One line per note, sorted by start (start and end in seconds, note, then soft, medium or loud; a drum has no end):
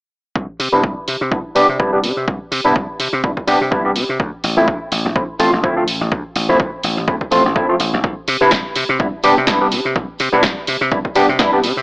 0.36 0.46 C2 medium
0.36 kick loud
0.60 0.70 C3 medium
0.60 open hi-hat loud
0.72 0.81 C3 medium
0.72 0.81 G3 medium
0.72 0.81 B3 medium
0.72 0.81 D4 medium
0.72 0.81 E4 loud
0.84 0.94 C2 medium
0.84 kick loud
1.07 1.18 C3 medium
1.07 open hi-hat loud
1.07 shaker medium
1.21 1.29 C3 medium
1.31 1.42 C2 medium
1.31 1.38 G3 medium
1.31 1.38 B3 medium
1.31 1.38 D4 medium
1.31 1.38 E4 medium
1.31 kick loud
1.55 1.66 C3 medium
1.55 1.66 G3 medium
1.55 1.66 B3 medium
1.55 1.66 D4 medium
1.55 1.66 G4 loud
1.55 open hi-hat loud
1.69 1.77 C3 medium
1.79 2.05 C2 medium
1.79 1.90 G3 medium
1.79 1.90 B3 medium
1.79 1.90 D4 medium
1.79 1.90 E4 loud
1.79 kick loud
1.93 1.98 G3 medium
1.93 1.98 B3 medium
1.93 1.98 D4 medium
1.93 1.98 G4 medium
2.03 2.14 C3 medium
2.03 open hi-hat loud
2.03 shaker medium
2.17 2.25 C3 medium
2.28 2.38 C2 medium
2.28 kick loud
2.52 2.62 C3 medium
2.52 open hi-hat loud
2.65 2.73 C3 medium
2.65 2.73 G3 medium
2.65 2.73 B3 medium
2.65 2.73 D4 medium
2.65 2.73 E4 loud
2.76 2.86 C2 medium
2.76 kick loud
3.00 3.10 C3 medium
3.00 open hi-hat loud
3.13 3.21 C3 medium
3.13 shaker soft
3.23 3.34 C2 medium
3.23 3.30 G3 medium
3.23 3.30 B3 medium
3.23 3.30 D4 medium
3.23 3.30 E4 medium
3.23 kick loud
3.37 kick medium
3.47 3.58 C3 medium
3.47 3.58 G3 medium
3.47 3.58 B3 medium
3.47 3.58 D4 medium
3.47 3.58 G4 loud
3.47 open hi-hat loud
3.47 shaker loud
3.61 3.69 C3 medium
3.61 shaker soft
3.71 3.97 C2 medium
3.71 3.82 G3 medium
3.71 3.82 B3 medium
3.71 3.82 D4 medium
3.71 3.82 E4 loud
3.71 kick loud
3.85 3.90 G3 medium
3.85 3.90 B3 medium
3.85 3.90 D4 medium
3.85 3.90 G4 medium
3.96 4.06 C3 medium
3.96 open hi-hat loud
3.96 shaker medium
4.09 4.17 C3 medium
4.09 shaker soft
4.20 4.30 D2 medium
4.20 kick loud
4.44 4.54 A1 medium
4.44 open hi-hat loud
4.44 shaker medium
4.57 4.65 A1 medium
4.57 4.65 F3 medium
4.57 4.65 A3 medium
4.57 4.65 C4 medium
4.57 4.66 E4 loud
4.57 shaker soft
4.68 4.78 D2 medium
4.68 kick loud
4.92 5.02 A1 medium
4.92 open hi-hat loud
4.92 shaker medium
5.05 5.13 A1 medium
5.05 shaker medium
5.15 5.26 D2 medium
5.15 5.22 F3 medium
5.15 5.22 A3 medium
5.15 5.22 C4 medium
5.15 5.22 E4 medium
5.15 kick loud
5.15 shaker soft
5.39 5.49 A1 medium
5.39 5.50 F3 medium
5.39 5.50 A3 medium
5.39 5.50 C4 medium
5.39 5.50 F4 loud
5.39 open hi-hat loud
5.39 shaker medium
5.53 5.61 A1 medium
5.53 shaker soft
5.63 5.87 D2 medium
5.63 5.74 F3 medium
5.63 5.74 A3 medium
5.63 5.74 C4 medium
5.63 5.74 E4 loud
5.63 kick loud
5.63 shaker soft
5.77 5.82 F3 medium
5.77 5.82 A3 medium
5.77 5.82 C4 medium
5.77 5.82 F4 medium
5.87 5.97 A1 medium
5.87 open hi-hat loud
5.87 shaker medium
6.01 6.09 A1 medium
6.01 shaker medium
6.12 6.22 D2 medium
6.12 kick loud
6.12 shaker soft
6.36 6.46 A1 loud
6.36 open hi-hat loud
6.36 shaker medium
6.49 6.57 A1 medium
6.49 6.57 F3 medium
6.49 6.57 A3 medium
6.49 6.57 C4 medium
6.49 6.58 E4 loud
6.49 shaker medium
6.60 6.70 D2 medium
6.60 kick loud
6.60 shaker soft
6.83 6.94 A1 medium
6.83 open hi-hat loud
6.83 shaker loud
6.97 7.05 A1 medium
6.97 shaker soft
7.07 7.18 D2 medium
7.07 7.14 F3 medium
7.07 7.14 A3 medium
7.07 7.14 C4 medium
7.07 7.14 E4 medium
7.07 kick loud
7.07 shaker soft
7.21 kick medium
7.31 7.42 A1 medium
7.31 7.42 F3 medium
7.31 7.42 A3 medium
7.31 7.42 C4 medium
7.31 7.42 F4 loud
7.31 open hi-hat loud
7.31 shaker loud
7.45 7.56 A1 medium
7.45 shaker soft
7.55 7.66 D2 medium
7.55 7.66 F3 medium
7.55 7.66 A3 medium
7.55 7.66 C4 medium
7.55 7.66 E4 loud
7.55 kick loud
7.55 shaker soft
7.69 7.74 F3 medium
7.69 7.74 A3 medium
7.69 7.74 C4 medium
7.69 7.74 F4 medium
7.80 7.90 A1 medium
7.80 open hi-hat loud
7.80 shaker medium
7.93 8.01 A1 loud
7.93 shaker soft
8.04 8.14 C2 loud
8.04 kick loud
8.04 shaker soft
8.28 8.38 C3 loud
8.28 open hi-hat loud
8.28 shaker medium
8.41 8.49 C3 medium
8.41 8.49 G3 medium
8.41 8.49 B3 medium
8.41 8.49 D4 medium
8.41 8.50 E4 loud
8.41 shaker medium
8.51 8.62 C2 medium
8.51 kick loud
8.51 snare loud
8.76 8.86 C3 medium
8.76 open hi-hat loud
8.76 shaker medium
8.89 8.97 C3 medium
8.89 shaker soft
8.99 9.10 C2 medium
8.99 9.06 G3 medium
8.99 9.06 B3 medium
8.99 9.06 D4 medium
8.99 9.06 E4 medium
8.99 kick loud
8.99 shaker soft
9.13 muted slap bass stroke soft
9.23 9.34 C3 medium
9.23 9.34 G3 medium
9.23 9.34 B3 medium
9.23 9.34 D4 medium
9.23 9.34 G4 loud
9.23 open hi-hat loud
9.23 shaker medium
9.36 9.45 C3 medium
9.36 shaker soft
9.47 9.74 C2 medium
9.47 9.58 G3 medium
9.47 9.58 B3 medium
9.47 9.58 D4 medium
9.47 9.58 E4 loud
9.47 kick loud
9.47 snare loud
9.61 9.66 G3 medium
9.61 9.66 B3 medium
9.61 9.66 D4 medium
9.61 9.67 G4 medium
9.72 9.82 C3 medium
9.72 open hi-hat loud
9.72 shaker medium
9.85 9.93 C3 medium
9.85 shaker soft
9.95 10.06 C2 medium
9.95 kick loud
9.95 shaker soft
10.09 muted slap bass stroke soft
10.19 10.30 C3 loud
10.19 open hi-hat loud
10.19 shaker medium
10.33 10.41 C3 medium
10.33 10.41 G3 medium
10.33 10.41 B3 medium
10.33 10.41 D4 medium
10.33 10.41 E4 medium
10.33 shaker soft
10.43 10.54 C2 medium
10.43 kick loud
10.43 snare loud
10.67 10.78 C3 medium
10.67 open hi-hat loud
10.67 shaker medium
10.81 10.89 C3 medium
10.81 shaker soft
10.91 11.02 C2 medium
10.91 10.98 G3 medium
10.91 10.98 B3 medium
10.91 10.98 D4 medium
10.91 10.98 E4 medium
10.91 kick loud
10.91 shaker soft
11.05 kick medium
11.15 11.26 C3 medium
11.15 11.26 G3 medium
11.15 11.26 B3 medium
11.15 11.26 D4 medium
11.15 11.26 G4 loud
11.15 open hi-hat loud
11.15 shaker medium
11.29 11.37 C3 medium
11.29 shaker soft
11.39 11.65 C2 medium
11.39 11.50 G3 medium
11.39 11.50 B3 medium
11.39 11.50 D4 medium
11.39 11.50 E4 loud
11.39 kick loud
11.39 snare loud
11.39 shaker soft
11.53 11.58 G3 medium
11.53 11.58 B3 medium
11.53 11.58 D4 medium
11.53 11.58 G4 medium
11.64 11.74 C3 medium
11.64 open hi-hat loud
11.64 shaker medium
11.77 11.82 C3 medium
11.77 shaker soft